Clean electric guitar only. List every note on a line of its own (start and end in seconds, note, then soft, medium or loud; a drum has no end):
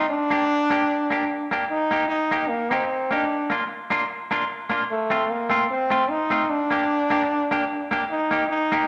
0.30 0.43 A#3 medium
0.30 0.44 D4 medium
0.30 0.44 G4 medium
0.46 muted clean electric guitar stroke soft
0.70 0.83 A#3 medium
0.70 0.84 D4 loud
0.70 0.84 G4 loud
1.10 1.23 A#3 medium
1.10 1.24 D4 medium
1.10 1.24 G4 medium
1.51 1.64 A#3 medium
1.51 1.64 D4 medium
1.51 1.64 G4 medium
1.91 2.03 A#3 medium
1.91 2.04 D#4 medium
1.91 2.04 G4 medium
2.07 muted clean electric guitar stroke soft
2.31 2.44 A#3 medium
2.31 2.44 D#4 loud
2.31 2.44 G4 loud
2.71 2.83 A#3 medium
2.71 2.84 D#4 medium
2.71 2.84 G4 medium
3.11 3.23 A#3 medium
3.11 3.24 D#4 medium
3.11 3.24 G4 medium
3.50 3.63 A#3 medium
3.50 3.64 D4 medium
3.50 3.64 F4 medium
3.67 muted clean electric guitar stroke soft
3.90 4.03 A#3 medium
3.90 4.03 D4 loud
3.90 4.04 F4 loud
4.31 4.43 A#3 medium
4.31 4.44 D4 medium
4.31 4.44 F4 medium
4.70 4.83 A#3 medium
4.70 4.83 D4 medium
4.70 4.84 F4 medium
5.10 5.23 A3 medium
5.10 5.23 C4 medium
5.10 5.24 F4 medium
5.26 muted clean electric guitar stroke soft
5.50 5.63 A3 medium
5.50 5.63 C4 medium
5.50 5.63 F4 loud
5.90 6.03 A3 medium
5.90 6.03 C4 medium
5.90 6.04 F4 loud
6.30 6.43 A3 medium
6.30 6.43 C4 medium
6.30 6.44 F4 loud
6.71 6.83 A#3 medium
6.71 6.83 D4 medium
6.71 6.84 G4 medium
6.87 muted clean electric guitar stroke soft
7.10 7.23 A#3 loud
7.10 7.23 D4 loud
7.10 7.24 G4 loud
7.51 7.63 A#3 medium
7.51 7.64 D4 medium
7.51 7.64 G4 loud
7.91 8.03 A#3 medium
7.91 8.04 D4 medium
7.91 8.04 G4 loud
8.31 8.43 A#3 medium
8.31 8.44 D#4 medium
8.31 8.44 G4 medium
8.48 muted clean electric guitar stroke soft
8.72 8.84 A#3 loud
8.72 8.84 D#4 loud
8.72 8.84 G4 loud